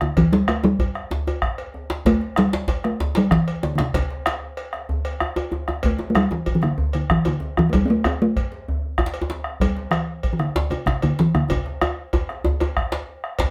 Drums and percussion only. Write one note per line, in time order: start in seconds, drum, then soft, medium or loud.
0.01 bombo rim medium
0.01 djembe slap soft
0.01 djembe tone medium
0.16 bombo low loud
0.16 cowbell medium
0.16 djembe bass medium
0.33 djembe slap medium
0.48 bombo rim loud
0.48 cowbell soft
0.48 djembe tone medium
0.64 djembe tone loud
0.79 bombo low loud
0.79 cowbell soft
0.79 djembe tone medium
0.95 bombo rim medium
0.95 djembe slap soft
1.11 djembe slap soft
1.11 djembe slap medium
1.11 djembe tone medium
1.11 djembe bass medium
1.27 cowbell soft
1.27 djembe tone medium
1.42 bombo rim medium
1.42 bombo low medium
1.58 cowbell soft
1.58 djembe slap soft
1.74 djembe tone medium
1.90 djembe slap medium
1.90 djembe slap soft
2.05 bombo low medium
2.05 cowbell medium
2.05 djembe slap medium
2.05 djembe bass soft
2.21 djembe slap soft
2.36 bombo rim medium
2.36 cowbell soft
2.36 djembe slap medium
2.36 djembe tone medium
2.53 djembe slap loud
2.68 bombo low medium
2.68 cowbell soft
2.68 djembe slap medium
2.84 bombo rim medium
2.84 djembe slap soft
3.00 djembe slap soft
3.00 djembe slap medium
3.00 djembe tone medium
3.00 djembe bass medium
3.15 cowbell soft
3.15 djembe slap medium
3.31 bombo rim medium
3.31 bombo low medium
3.31 djembe slap medium
3.47 cowbell soft
3.47 djembe slap soft
3.63 djembe slap medium
3.63 djembe tone medium
3.78 bombo rim medium
3.78 djembe slap medium
3.78 djembe slap soft
3.94 bombo low loud
3.94 cowbell medium
3.94 djembe slap medium
3.94 djembe bass medium
4.10 djembe slap medium
4.26 bombo rim loud
4.26 cowbell soft
4.26 djembe slap medium
4.26 djembe tone medium
4.57 bombo rim soft
4.57 cowbell soft
4.57 djembe slap soft
4.73 bombo rim medium
4.73 djembe slap medium
4.89 djembe tone medium
4.89 djembe bass medium
5.05 bombo rim soft
5.05 cowbell soft
5.20 bombo rim medium
5.20 djembe tone medium
5.36 bombo rim soft
5.36 cowbell soft
5.36 djembe slap medium
5.36 djembe tone medium
5.51 bombo rim soft
5.51 djembe tone medium
5.68 bombo rim medium
5.68 djembe tone medium
5.83 bombo low medium
5.83 cowbell medium
5.83 djembe bass medium
5.99 djembe slap medium
5.99 djembe tone medium
6.15 bombo rim medium
6.15 cowbell soft
6.15 djembe tone medium
6.30 djembe slap soft
6.30 djembe tone medium
6.46 bombo low medium
6.46 cowbell soft
6.46 djembe tone medium
6.62 bombo rim medium
6.62 djembe slap medium
6.78 djembe slap soft
6.78 djembe tone medium
6.78 djembe bass medium
6.93 cowbell soft
7.10 bombo rim loud
7.10 bombo low medium
7.25 cowbell soft
7.25 djembe slap medium
7.25 djembe tone medium
7.40 djembe tone medium
7.57 bombo rim medium
7.57 djembe slap soft
7.57 djembe bass medium
7.72 bombo low loud
7.72 cowbell medium
7.72 djembe tone medium
7.72 djembe bass medium
7.88 djembe slap medium
8.04 bombo rim loud
8.04 cowbell soft
8.04 djembe tone medium
8.04 djembe bass medium
8.20 djembe slap soft
8.36 bombo low loud
8.36 cowbell soft
8.52 djembe slap medium
8.68 djembe slap soft
8.68 djembe tone medium
8.68 djembe bass medium
8.98 bombo rim medium
8.98 bombo low medium
8.98 djembe tone medium
9.06 djembe slap medium
9.14 cowbell soft
9.14 djembe slap soft
9.22 djembe tone medium
9.30 djembe slap medium
9.30 djembe tone medium
9.44 bombo rim medium
9.44 djembe slap soft
9.60 bombo low loud
9.60 cowbell medium
9.60 djembe bass medium
9.77 djembe slap medium
9.91 bombo rim medium
9.91 cowbell soft
9.91 djembe tone medium
10.09 djembe slap soft
10.23 bombo low medium
10.23 cowbell soft
10.40 bombo rim medium
10.40 djembe slap soft
10.55 djembe slap soft
10.55 djembe slap medium
10.55 djembe tone medium
10.55 djembe bass medium
10.71 cowbell soft
10.71 djembe tone medium
10.87 bombo rim medium
10.87 bombo low medium
10.87 djembe slap medium
11.02 cowbell soft
11.02 djembe slap soft
11.02 djembe tone medium
11.19 djembe slap medium
11.19 djembe tone medium
11.35 bombo rim medium
11.35 djembe slap soft
11.35 djembe tone medium
11.50 bombo rim soft
11.50 bombo low medium
11.50 cowbell medium
11.50 djembe tone medium
11.50 djembe bass medium
11.65 bombo rim soft
11.65 djembe slap medium
11.81 bombo rim medium
11.81 cowbell soft
11.81 djembe tone medium
12.13 bombo rim soft
12.13 bombo low medium
12.13 cowbell soft
12.13 djembe tone medium
12.29 bombo rim medium
12.29 djembe slap medium
12.44 bombo rim soft
12.44 djembe tone medium
12.44 djembe bass medium
12.60 cowbell soft
12.60 djembe tone medium
12.77 bombo rim medium
12.77 bombo low medium
12.77 djembe slap soft
12.92 cowbell soft
12.92 djembe slap medium
12.92 djembe slap soft
13.08 djembe slap soft
13.24 bombo rim medium
13.39 bombo low loud
13.39 cowbell medium
13.39 djembe slap loud
13.39 djembe bass medium